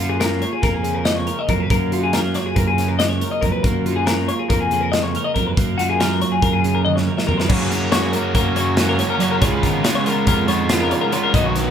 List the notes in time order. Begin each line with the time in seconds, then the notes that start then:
Already playing: F#2 A#3
0.00 F4
0.10 G#4
0.20 A#4, snare, closed hi-hat
0.42 C#5, closed hi-hat
0.53 G#4
0.62 F2 A#3 A#4, kick, snare, closed hi-hat
0.74 G#4
0.83 C#3, closed hi-hat
0.95 A#4
1.05 D#5, snare, closed hi-hat
1.16 C#5
1.27 A#4, closed hi-hat
1.39 D#5
1.49 F2 F#2 A#3 A#4, kick, closed hi-hat
1.60 B4
1.70 F#2 A#3 A#4, kick, closed hi-hat
1.92 F4 F#4, closed hi-hat
2.04 G#4
2.13 F#3 A#4, snare, closed hi-hat
2.34 C#5, snare, closed hi-hat
2.46 G#4
2.56 F#2 A#3 A#4, kick, closed hi-hat
2.68 G#4
2.78 C#3, snare, closed hi-hat
2.88 A#4
2.99 D#5, snare, closed hi-hat
3.09 C#5
3.21 A#4, closed hi-hat
3.31 D#5
3.41 F2 F#2 A#3 A#4, kick, closed hi-hat
3.52 B4
3.63 F#2 A#3 A#4, kick, closed hi-hat
3.85 F4 F#4, closed hi-hat
3.96 G#4
4.06 A#4, snare, closed hi-hat
4.28 C#5, closed hi-hat
4.39 G#4
4.49 F2 A#3 A#4, kick, closed hi-hat
4.60 G#4
4.71 C#3, closed hi-hat
4.81 A#4
4.92 D#5, snare, closed hi-hat
5.03 C#5
5.15 A#4, closed hi-hat
5.24 D#5
5.34 F2 F#2 A#3 A#4, kick, closed hi-hat
5.47 B4
5.57 F#2 A#3 A#4, kick, closed hi-hat
5.78 F4 F#4, snare, closed hi-hat
5.90 G#4
6.00 F#3 A#4, snare, closed hi-hat
6.22 C#5, closed hi-hat
6.32 G#4
6.42 F#2 A#3 A#4, kick, closed hi-hat
6.53 G#4
6.64 C#3, closed hi-hat
6.75 A#4
6.85 D#5, high tom
6.96 C#5, snare
7.07 A#4
7.17 D#5, snare
7.27 F2 F#2 A#3 A#4, floor tom
7.38 B4, snare
7.48 F#2 C#3 F#3 A#3 C#4 F#4 C#5, kick, crash
7.59 B4
7.69 F#3 A#3 C#4 F#4 A#4, snare, closed hi-hat
7.91 F#2 C#3 F#3 A#3 C#4 F#4 C#5, snare, closed hi-hat
8.03 C#5
8.12 A#3 C#4 F#4 A#4, closed hi-hat
8.17 F#3
8.35 F#2 A#3 A#4, kick, closed hi-hat
8.55 C#3 A#3 C#4 F#4 C#5, closed hi-hat
8.59 F#3
8.77 F#3 A#3 C#4 F#4 A#4, snare, closed hi-hat
8.89 A#4
8.99 C#5, snare, closed hi-hat
9.10 A#4
9.19 F#2 C#3 F#3 A#3 C#4 C#5, closed hi-hat
9.23 F#4
9.31 A#4
9.40 C#2 C#3 G#3 B3 F4 C#5, kick, closed hi-hat
9.52 B4
9.62 G#1 G#3 B3 F4 A#4, kick, snare, closed hi-hat
9.83 C#3 G#3 B3 F4 C#5, snare, closed hi-hat
9.95 C#5
10.05 G#3 B3 F4 A#4, closed hi-hat
10.27 F2 C#4 A#4, kick, closed hi-hat
10.48 G#2 G#3 B3 F4 C#5, closed hi-hat
10.69 C#3 G#3 B3 F4 A#4, snare, closed hi-hat
10.80 A#4
10.91 C#5, closed hi-hat
11.01 A#4
11.12 C#3 G#3 B3 F4 C#5, closed hi-hat
11.23 A#4
11.33 B1 B2 D#3 F#3 B3 D#4 F#4 D#5, kick, closed hi-hat
11.46 C#5
11.54 F#3 B3 D#4 B4, snare, closed hi-hat